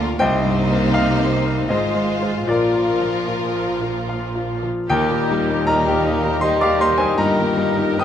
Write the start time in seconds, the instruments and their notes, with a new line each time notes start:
Already playing: double bass section D2, grand piano D2 D3 A#3 A#4 D5 F5 A#5, cello section D3, viola section A#3, violin section F4 A#4
0.00 grand piano F4
0.19 double bass section C2, grand piano C2 C5 D#5 G5, cello section C3, viola section A#3, french horn section A#3 D#4, violin section D#4 C5
0.44 grand piano G2
0.71 grand piano A#3
0.94 grand piano D#4 F5
1.20 grand piano C5
1.45 grand piano A#4
1.68 double bass section G#1, cello section G#2, grand piano G#2 G#4 C5 D#5, viola section G#3, french horn section G#3 F4, violin section F4 C5
1.95 grand piano G#3
2.22 grand piano F4 C5
2.47 double bass section A#1, grand piano A#2 F4 A#4 D5, cello section A#2, viola section F3, french horn section A#3, violin section F4 A#4
2.75 grand piano A#3
3.01 grand piano F3
3.28 grand piano F4
3.56 grand piano A#4
3.82 grand piano F4
4.09 grand piano F5
4.35 grand piano F4
4.63 grand piano F3
4.87 cello section D#2, double bass section D#2, grand piano D#2 A#4 G5, viola section A#3, bassoon A#3, french horn section A#3 D#4, violin section D#4 G4, clarinet D#4, oboe G4
5.08 grand piano A#2, viola section G3, violin section G4 A#4
5.29 grand piano G3, viola section A#3, violin section D#4 G4
5.49 viola section G3, grand piano D#4, violin section G4 A#4
5.66 bassoon G3, french horn section A#3 D#4, viola section A#3, violin section D#4 G4, clarinet D#4, oboe A#4, grand piano A#4 D#5 A#5, flute section G5
5.84 viola section G3, violin section G4 A#4, grand piano G4
6.02 violin section D#4 G4, flute section F5
6.06 viola section A#3, grand piano D#5
6.23 violin section G4 A#4, grand piano A#5
6.27 viola section G3
6.41 bassoon G3, viola section A#3, violin section D#4 G4, oboe C5, grand piano D#5 C6, flute section D#5
6.59 viola section G3, violin section G4 A#4, grand piano G4 F5 D6, oboe D5
6.78 viola section A#3, violin section D#4 G4, grand piano A#4 D#5 C6, oboe C5
6.98 viola section G3, grand piano D#4 C5 G#5, violin section G4 A#4, oboe G#4
7.16 double bass section G1, grand piano G2 D#5 A#5, cello section G2, viola section G3, french horn section A#3 D#4, bassoon A#3, violin section D#4 G4, clarinet F4, oboe A#4, flute section D#5
7.36 grand piano D#3, viola section A#3, violin section G4 A#4
7.57 grand piano G3, viola section G3, violin section D#4 G4, bassoon D#4
7.78 grand piano D#4, violin section G4 A#4
7.83 viola section A#3
7.98 viola section G3, french horn section A#3 D#4, bassoon C4, clarinet D#4, violin section D#4 G4, grand piano A#4 G5 D#6, oboe D#5